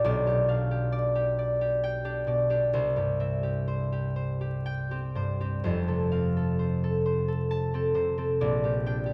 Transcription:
harp
Already playing: D4 G4 G5
0.04 B1 D5
0.26 B2 G4
0.48 D4 F5
0.71 G4
0.92 D5
1.15 G4
1.39 D5
1.61 G4
1.84 G5
2.05 D4 G4
2.27 B2 D5
2.50 D4 G4
2.73 C2 C5
2.96 G2 G4
3.20 C4 E5
3.43 G4
3.68 C5
3.92 G4
4.16 C5
4.41 G4
4.66 G5
4.91 C4 G4
5.15 G2 C5
5.40 C4 G4
5.64 F1 F2 C5
5.88 C3 A4
6.12 C4 F5
6.37 A4
6.59 C5
6.84 A4
7.06 C5
7.28 A4
7.51 A5
7.74 C4 A4
7.94 C3 C5
8.18 C4 A4
8.41 A#1 D5
8.64 A#2 G4
8.86 D4 G5
9.06 G4

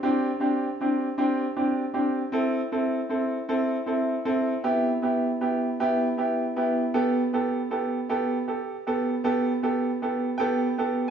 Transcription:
upright piano
0.03 C4 D4 G4
0.40 C4 D4 G4
0.81 C4 D4 G4
1.18 C4 D4 G4
1.57 C4 D4 G4
1.94 C4 D4 G4
2.32 C4 E4 A4
2.72 C4 E4 A4
3.09 C4 E4 A4
3.49 C4 E4 A4
3.86 C4 E4 A4
4.25 C4 E4 A4
4.64 B3 E4 G4
5.02 B3 E4 G4
5.41 B3 E4 G4
5.80 B3 E4 G4
6.17 B3 E4 G4
6.56 B3 E4 G4
6.94 B3 G4 A4
7.33 B3 G4 A4
7.71 B3 G4 A4
8.09 B3 G4 A4
8.48 G4 A4
8.87 B3 G4 A4
9.24 B3 G4 A4
9.62 B3 G4 A4
10.02 B3 G4 A4
10.38 B3 G4 A4 G5
10.78 B3 G4 A4

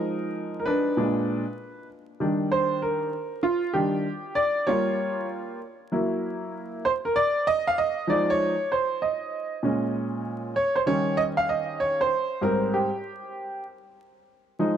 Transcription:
upright piano
Already playing: F3 G#3 D#4 A#4
0.60 A#4
0.66 D4 B4
0.97 A#2 G#3 D4
2.20 D#3 G3 D4
2.52 C5
2.82 A#4
3.43 F4
3.73 D#3 G3 D4 G4
4.35 D5
4.67 G3 A#3 F4 C#5
5.92 F#3 A#3 E4
6.85 C5
7.05 A#4
7.16 D5
7.47 D#5
7.67 F5
7.78 D#5
8.07 F3 G#3 D#4 D5
8.30 C#5
8.72 C5
9.02 D#5
9.63 A#2 G#3 C#4
10.56 C#5
10.76 C5
10.86 D#3 G3 C#4 C#5
11.17 D#5
11.37 F5
11.49 D#5
11.80 C#5
12.01 C5
12.41 G#2 G3 C4 A#4
12.74 G4
14.59 F3 G#3 D#4

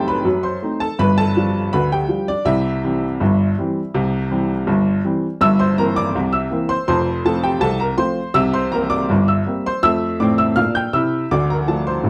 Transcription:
upright piano
Already playing: F#1 F#2 A3 C4 D#4 G4 A4 C5 G5 A5 C6
0.08 B4 B5
0.25 F#2 F#3
0.43 C5 C6
0.62 A3 C4 D#4
0.80 A4 A5
0.99 G1 G2 B4 B5
1.18 A4 A5
1.37 F3 G3 D4
1.73 D2 D3 B4 B5
1.92 G4 G5
2.09 F3 G3 D4
2.28 D4 D5
2.45 C2 C3 E4 E5
2.84 E3 G3 C4
3.20 G1 G2
3.59 E3 G3 C4
3.94 C2 C3
4.31 E3 G3 C4
4.67 G1 G2
5.05 E3 G3 C4
5.41 G1 G2 E5 E6
5.59 C5 C6
5.78 E3 A#3 C4 A#4 A#5
5.96 D5 D6
6.15 C2 C3
6.33 E5 E6
6.51 E3 A#3 C4
6.69 C5 C6
6.88 F1 F2 C5 C6
7.25 F3 A3 C4 A4 A5
7.43 G4 G5
7.60 C2 C3 A4 A5
7.80 A#4 A#5
7.98 F3 A3 C4 C5 C6
8.34 C2 C3 E5 E6
8.54 C5 C6
8.72 G3 A#3 C4 A#4 A#5
8.90 D5 D6
9.09 G1 G2
9.28 E5 E6
9.46 G3 A#3 C4
9.66 C5 C6
9.83 F2 A3 E5 E6
10.20 A2 C4 D5 D6
10.38 E5 E6
10.56 A#2 D4 F5 F6
10.75 G5 G6
10.93 C3 E4 E5 E6
11.31 D2 D3 D5 D6
11.50 A#4 A#5
11.68 F3 A3 D4 A4 A5
11.87 C5 C6
12.04 A1 A2

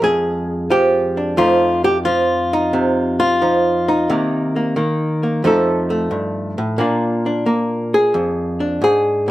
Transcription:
hollow-body jazz guitar
Already playing: F3 G#3 D4
0.02 F2 G#4
0.70 F3 G4
1.17 D4
1.37 F2 F3 A3 D#4 F4
1.84 G4
2.05 F3 F4
2.53 D#4
2.73 C3
3.20 F4
3.42 F3 D#4
3.88 D#4
4.10 C3 D#3 A#3
4.56 A#3
4.76 D#3 A#3
5.23 A#3
5.44 F2 F3 A3 D#4 A4
5.90 A3
6.11 G2
6.58 A2
6.78 A#2 A#3 D4 F4
7.26 D4
7.46 A#3
7.94 G#4
8.14 F2
8.60 D4
8.82 G#2 G#4
9.28 A#2

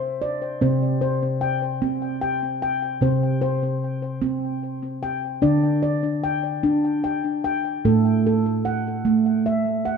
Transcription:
handpan
Already playing: C3 C5
0.22 D5
0.61 C3 C4 C5
1.01 C5
1.41 G5
1.82 C4
2.21 G5
2.62 G5
3.01 C3 C4 C5
3.42 C5
4.22 C4
5.03 G5
5.42 D3 D4 D5
5.83 D5
6.24 G5
6.63 D4
7.04 G5
7.44 G5
7.85 A2 A3 A4
8.27 A4
8.65 F#5
9.05 A3
9.46 E5
9.85 F#5

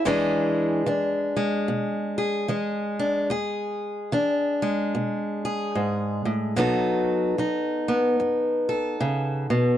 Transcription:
steel-string acoustic guitar
0.05 E2 E3 G#3 D4 G#4
0.86 E3 D4
1.36 G#3
1.68 B2
2.18 G#4
2.48 E3 G#3
2.99 D4
3.30 E2 G#4
4.12 E3 D4
4.62 G#3
4.95 B2
5.45 G#4
5.75 G#2
6.25 A2
6.56 B2 F#3 B3 D#4 A4
7.38 F#3 D#4
7.88 B3
8.20 F#2
8.69 A4
9.00 C#3
9.50 B2

